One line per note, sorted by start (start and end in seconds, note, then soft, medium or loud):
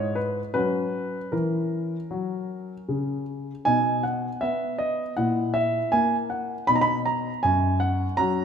0.00 0.40 G#2 soft
0.00 0.51 E4 soft
0.00 0.16 C#5 medium
0.15 0.39 B4 medium
0.54 1.17 F#3 soft
0.54 3.61 C#4 soft
0.54 1.32 B4 medium
1.32 1.95 E3 soft
1.32 3.22 A#4 soft
2.11 2.73 F#3 soft
2.88 3.50 C#3 soft
3.65 4.27 B2 soft
3.65 5.14 D#4 soft
3.65 4.03 G#5 medium
4.03 4.41 F#5 medium
4.41 5.03 B3 soft
4.41 4.75 E5 medium
4.79 5.13 D#5 medium
5.17 5.78 A#2 soft
5.17 6.65 E4 soft
5.17 5.55 F#5 medium
5.54 5.92 E5 medium
5.92 6.54 A#3 soft
5.92 6.15 G#5 medium
6.30 6.64 F#5 soft
6.67 7.29 B2 soft
6.67 8.15 D#4 soft
6.67 6.75 B5 medium
6.75 6.83 A#5 medium
6.81 7.06 B5 medium
7.06 7.40 A#5 medium
7.43 8.04 F#2 soft
7.43 7.77 G#5 medium
7.80 8.18 F#5 medium
8.17 8.45 F#3 medium
8.17 8.45 C#4 soft
8.17 8.45 A#5 medium